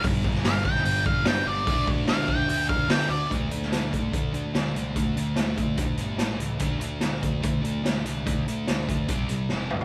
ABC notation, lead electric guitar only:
X:1
M:4/4
L:1/8
Q:1/4=145
K:Dm
V:1 name="Lead electric guitar"
z2 f g g f g d- | d z f g g f g d | z8 | z8 |
z8 | z8 |]